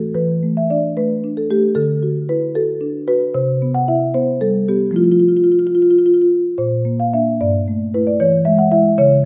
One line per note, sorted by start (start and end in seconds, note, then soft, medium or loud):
0.00 0.11 A2 soft
0.00 0.16 A3 soft
0.00 0.14 A4 soft
0.15 1.72 E3 soft
0.15 0.54 B4 medium
0.43 0.86 A3 soft
0.57 0.70 E5 medium
0.70 1.13 D4 soft
0.70 0.96 D5 medium
0.97 1.39 A3 soft
0.97 1.35 B4 medium
1.24 1.66 D4 soft
1.37 1.50 A4 medium
1.50 1.76 A3 soft
1.50 1.76 G4 medium
1.75 3.29 D3 soft
1.75 2.26 A4 medium
2.03 2.45 F#4 soft
2.29 2.71 E4 soft
2.29 2.54 B4 medium
2.55 2.97 F#4 soft
2.55 3.05 A4 medium
2.81 3.23 D4 soft
3.08 3.34 F#4 soft
3.08 3.33 B4 medium
3.34 4.91 C3 medium
3.34 3.72 C5 medium
3.62 4.03 B3 soft
3.75 3.87 F#5 medium
3.88 4.30 E4 soft
3.88 4.13 E5 medium
4.14 4.57 B3 soft
4.14 4.39 C5 medium
4.41 4.84 G3 soft
4.41 4.67 A4 medium
4.68 4.95 B3 soft
4.68 4.94 G4 medium
4.91 6.53 F3 soft
4.91 6.54 A3 soft
4.91 6.55 E4 soft
4.96 5.04 F4 medium
5.04 5.12 F4 soft
5.12 5.20 F4 soft
5.20 5.28 F4 soft
5.28 5.37 F4 soft
5.37 5.44 F4 soft
5.44 5.52 F4 soft
5.52 5.59 F4 soft
5.59 5.67 F4 soft
5.67 5.75 F4 soft
5.75 5.82 F4 soft
5.82 5.91 F4 soft
5.91 5.98 F4 soft
5.98 6.06 F4 soft
6.06 6.14 F4 soft
6.14 6.22 F4 soft
6.22 6.28 F4 soft
6.58 7.37 A#2 soft
6.58 6.98 C5 medium
6.85 7.12 A#3 soft
7.00 7.13 F5 medium
7.14 7.37 A#3 soft
7.14 7.37 D4 soft
7.14 7.39 E5 medium
7.41 8.18 G2 soft
7.41 7.91 D5 medium
7.68 7.93 A3 soft
7.94 8.18 A3 soft
7.94 8.18 E4 soft
7.94 8.07 B4 medium
8.07 8.20 D5 medium
8.20 8.96 E3 soft
8.20 8.45 C#5 medium
8.45 8.70 G#3 soft
8.45 8.59 E5 medium
8.59 8.72 F#5 medium
8.71 8.95 G#3 soft
8.71 8.95 E4 soft
8.71 8.97 E5 medium
8.98 9.25 C#3 medium
8.98 9.25 C#5 medium